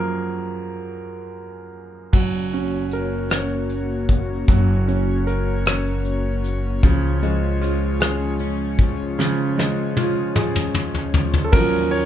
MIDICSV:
0, 0, Header, 1, 6, 480
1, 0, Start_track
1, 0, Tempo, 783290
1, 1308, Time_signature, 6, 3, 24, 8
1, 7387, End_track
2, 0, Start_track
2, 0, Title_t, "Grand piano"
2, 0, Program_c, 0, 0
2, 0, Control_c, 0, 64, 127
2, 0, Note_on_c, 0, 42, 46
2, 0, Note_on_c, 0, 53, 46
2, 0, Note_on_c, 0, 58, 54
2, 0, Note_on_c, 0, 66, 77
2, 0, Note_on_c, 0, 68, 74
2, 0, Note_on_c, 0, 70, 76
2, 559, Note_off_c, 0, 42, 0
2, 562, Note_off_c, 0, 53, 0
2, 562, Note_off_c, 0, 58, 0
2, 1037, Note_off_c, 0, 70, 0
2, 1304, Note_on_c, 0, 54, 62
2, 1316, Control_c, 0, 64, 0
2, 1318, Note_off_c, 0, 68, 0
2, 1319, Note_off_c, 0, 66, 0
2, 1410, Control_c, 0, 64, 127
2, 1553, Note_on_c, 0, 61, 42
2, 1797, Note_on_c, 0, 70, 46
2, 2037, Note_on_c, 0, 73, 51
2, 2487, Note_off_c, 0, 61, 0
2, 2722, Note_off_c, 0, 54, 0
2, 2728, Note_off_c, 0, 70, 0
2, 2751, Note_on_c, 0, 54, 62
2, 2968, Note_off_c, 0, 73, 0
2, 2987, Note_on_c, 0, 61, 49
2, 3229, Note_on_c, 0, 70, 52
2, 3471, Note_on_c, 0, 73, 56
2, 3923, Note_off_c, 0, 61, 0
2, 4164, Note_off_c, 0, 70, 0
2, 4165, Note_off_c, 0, 54, 0
2, 4168, Note_off_c, 0, 73, 0
2, 4190, Note_on_c, 0, 49, 68
2, 4197, Control_c, 0, 64, 0
2, 4291, Control_c, 0, 64, 127
2, 4429, Note_on_c, 0, 56, 49
2, 4667, Note_on_c, 0, 65, 52
2, 4904, Note_on_c, 0, 68, 54
2, 5363, Note_off_c, 0, 56, 0
2, 5601, Note_off_c, 0, 65, 0
2, 5603, Note_off_c, 0, 49, 0
2, 5630, Note_on_c, 0, 49, 65
2, 5840, Note_off_c, 0, 68, 0
2, 5870, Note_on_c, 0, 56, 51
2, 6111, Note_on_c, 0, 65, 55
2, 6348, Note_on_c, 0, 68, 54
2, 6801, Note_off_c, 0, 56, 0
2, 7012, Note_on_c, 0, 69, 60
2, 7040, Note_off_c, 0, 49, 0
2, 7041, Note_off_c, 0, 65, 0
2, 7043, Note_off_c, 0, 68, 0
2, 7059, Note_off_c, 0, 69, 0
2, 7062, Note_on_c, 0, 70, 89
2, 7070, Control_c, 0, 64, 0
2, 7072, Note_on_c, 0, 54, 57
2, 7074, Note_on_c, 0, 61, 54
2, 7077, Note_on_c, 0, 53, 67
2, 7182, Control_c, 0, 64, 127
2, 7300, Note_on_c, 0, 73, 78
2, 7309, Note_off_c, 0, 70, 0
2, 7387, Note_off_c, 0, 53, 0
2, 7387, Note_off_c, 0, 54, 0
2, 7387, Note_off_c, 0, 61, 0
2, 7387, Note_off_c, 0, 73, 0
2, 7387, End_track
3, 0, Start_track
3, 0, Title_t, "Analog synth pad"
3, 0, Program_c, 1, 89
3, 1310, Note_on_c, 1, 58, 63
3, 1311, Note_on_c, 1, 66, 61
3, 1312, Note_on_c, 1, 73, 67
3, 1313, Note_on_c, 1, 61, 63
3, 4165, Note_off_c, 1, 58, 0
3, 4166, Note_off_c, 1, 66, 0
3, 4193, Note_on_c, 1, 56, 68
3, 4196, Note_on_c, 1, 65, 58
3, 7041, Note_off_c, 1, 56, 0
3, 7041, Note_off_c, 1, 73, 0
3, 7042, Note_off_c, 1, 61, 0
3, 7042, Note_off_c, 1, 65, 0
3, 7064, Note_on_c, 1, 51, 62
3, 7068, Note_on_c, 1, 49, 70
3, 7068, Note_on_c, 1, 58, 67
3, 7069, Note_on_c, 1, 63, 79
3, 7387, Note_off_c, 1, 49, 0
3, 7387, Note_off_c, 1, 51, 0
3, 7387, Note_off_c, 1, 58, 0
3, 7387, Note_off_c, 1, 63, 0
3, 7387, End_track
4, 0, Start_track
4, 0, Title_t, "Steel-string acoustic guitar"
4, 0, Program_c, 2, 25
4, 4188, Note_on_c, 2, 53, 73
4, 4423, Note_off_c, 2, 53, 0
4, 4431, Note_on_c, 2, 53, 54
4, 4667, Note_on_c, 2, 56, 56
4, 4902, Note_off_c, 2, 53, 0
4, 4909, Note_on_c, 2, 53, 56
4, 5149, Note_on_c, 2, 61, 61
4, 5382, Note_off_c, 2, 53, 0
4, 5389, Note_on_c, 2, 53, 55
4, 5624, Note_off_c, 2, 53, 0
4, 5631, Note_on_c, 2, 53, 75
4, 5865, Note_off_c, 2, 53, 0
4, 5872, Note_on_c, 2, 53, 61
4, 6105, Note_off_c, 2, 56, 0
4, 6115, Note_on_c, 2, 56, 51
4, 6344, Note_off_c, 2, 53, 0
4, 6351, Note_on_c, 2, 53, 54
4, 6586, Note_off_c, 2, 61, 0
4, 6589, Note_on_c, 2, 61, 57
4, 6822, Note_off_c, 2, 53, 0
4, 6830, Note_on_c, 2, 53, 54
4, 7114, Note_off_c, 2, 53, 0
4, 7116, Note_off_c, 2, 56, 0
4, 7387, Note_off_c, 2, 61, 0
4, 7387, End_track
5, 0, Start_track
5, 0, Title_t, "Upright bass"
5, 0, Program_c, 3, 32
5, 1308, Note_on_c, 3, 30, 83
5, 2724, Note_off_c, 3, 30, 0
5, 2748, Note_on_c, 3, 30, 96
5, 4164, Note_off_c, 3, 30, 0
5, 4186, Note_on_c, 3, 37, 87
5, 5601, Note_off_c, 3, 37, 0
5, 7067, Note_on_c, 3, 39, 98
5, 7387, Note_off_c, 3, 39, 0
5, 7387, End_track
6, 0, Start_track
6, 0, Title_t, "Drums"
6, 1307, Note_on_c, 9, 36, 87
6, 1307, Note_on_c, 9, 49, 73
6, 1368, Note_off_c, 9, 36, 0
6, 1368, Note_off_c, 9, 49, 0
6, 1549, Note_on_c, 9, 42, 47
6, 1610, Note_off_c, 9, 42, 0
6, 1786, Note_on_c, 9, 42, 55
6, 1847, Note_off_c, 9, 42, 0
6, 2022, Note_on_c, 9, 42, 64
6, 2030, Note_on_c, 9, 37, 114
6, 2083, Note_off_c, 9, 42, 0
6, 2092, Note_off_c, 9, 37, 0
6, 2264, Note_on_c, 9, 42, 45
6, 2325, Note_off_c, 9, 42, 0
6, 2506, Note_on_c, 9, 36, 75
6, 2506, Note_on_c, 9, 42, 60
6, 2567, Note_off_c, 9, 36, 0
6, 2567, Note_off_c, 9, 42, 0
6, 2746, Note_on_c, 9, 42, 70
6, 2747, Note_on_c, 9, 36, 89
6, 2807, Note_off_c, 9, 42, 0
6, 2808, Note_off_c, 9, 36, 0
6, 2992, Note_on_c, 9, 42, 44
6, 3053, Note_off_c, 9, 42, 0
6, 3230, Note_on_c, 9, 42, 56
6, 3291, Note_off_c, 9, 42, 0
6, 3467, Note_on_c, 9, 42, 73
6, 3476, Note_on_c, 9, 37, 109
6, 3528, Note_off_c, 9, 42, 0
6, 3537, Note_off_c, 9, 37, 0
6, 3706, Note_on_c, 9, 42, 45
6, 3767, Note_off_c, 9, 42, 0
6, 3947, Note_on_c, 9, 42, 63
6, 4008, Note_off_c, 9, 42, 0
6, 4186, Note_on_c, 9, 42, 67
6, 4187, Note_on_c, 9, 36, 95
6, 4247, Note_off_c, 9, 42, 0
6, 4248, Note_off_c, 9, 36, 0
6, 4431, Note_on_c, 9, 42, 47
6, 4492, Note_off_c, 9, 42, 0
6, 4669, Note_on_c, 9, 42, 56
6, 4676, Note_on_c, 9, 37, 28
6, 4730, Note_off_c, 9, 42, 0
6, 4737, Note_off_c, 9, 37, 0
6, 4905, Note_on_c, 9, 42, 71
6, 4914, Note_on_c, 9, 37, 114
6, 4966, Note_off_c, 9, 42, 0
6, 4975, Note_off_c, 9, 37, 0
6, 5142, Note_on_c, 9, 42, 41
6, 5203, Note_off_c, 9, 42, 0
6, 5384, Note_on_c, 9, 42, 67
6, 5385, Note_on_c, 9, 36, 83
6, 5446, Note_off_c, 9, 42, 0
6, 5447, Note_off_c, 9, 36, 0
6, 5636, Note_on_c, 9, 38, 42
6, 5698, Note_off_c, 9, 38, 0
6, 5878, Note_on_c, 9, 38, 61
6, 5939, Note_off_c, 9, 38, 0
6, 6108, Note_on_c, 9, 48, 71
6, 6169, Note_off_c, 9, 48, 0
6, 6346, Note_on_c, 9, 47, 82
6, 6408, Note_off_c, 9, 47, 0
6, 6469, Note_on_c, 9, 45, 73
6, 6530, Note_off_c, 9, 45, 0
6, 6585, Note_on_c, 9, 45, 86
6, 6646, Note_off_c, 9, 45, 0
6, 6706, Note_on_c, 9, 43, 71
6, 6768, Note_off_c, 9, 43, 0
6, 6826, Note_on_c, 9, 43, 98
6, 6887, Note_off_c, 9, 43, 0
6, 6946, Note_on_c, 9, 43, 86
6, 7008, Note_off_c, 9, 43, 0
6, 7064, Note_on_c, 9, 49, 86
6, 7065, Note_on_c, 9, 36, 110
6, 7125, Note_off_c, 9, 49, 0
6, 7126, Note_off_c, 9, 36, 0
6, 7311, Note_on_c, 9, 51, 39
6, 7373, Note_off_c, 9, 51, 0
6, 7387, End_track
0, 0, End_of_file